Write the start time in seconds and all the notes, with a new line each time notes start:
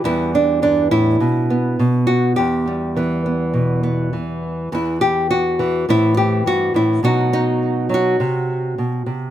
0.04 E2 E3 G3 B3 E4
0.35 D4
0.62 G2 D4
0.91 A2 E4
1.20 B2
1.50 B3
1.79 B2
2.07 F#4
2.36 E2 G4
2.68 G3
2.97 E3 B3
3.26 B3
3.54 B2
3.83 B3
4.13 E3
4.72 E2 E3 E4
5.01 G4
5.31 F#4
5.59 E3
5.89 A2 E3 C4 E4
6.17 G4
6.46 G2 F#4
6.74 A2 E4
7.03 B2 F#3 B3 D#4 F#4
7.33 D#4
7.89 F#3
7.94 F#4
8.20 C3
8.78 B2
9.06 C3